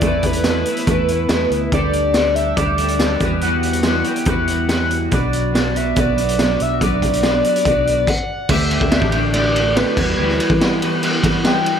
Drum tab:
CC |----------------|----------------|----------------|----------------|
RD |----------------|----------------|----------------|----------------|
HH |x-xxx-xxx-x-x-x-|x-x-x-x-x-xxx-x-|x-xxx-xxx-x-x-x-|x-x-x-x-x-xxx-x-|
SD |----o-------o---|----o-------o---|----o-------o---|----o-------o---|
BD |o-o-----o-------|o-------o-----o-|--------o-------|o-------o-------|

CC |------------x---|x-------------x-|----------------|
RD |----------------|--x-x-x-x-x-x---|--x-x-x-x-x-x-x-|
HH |x-xxx-xxx-x-----|----------------|----------------|
SD |----o-----------|----o-------o---|-o--o-------o---|
BD |o-o-----o---o---|o--o-o--------o-|---o------o-----|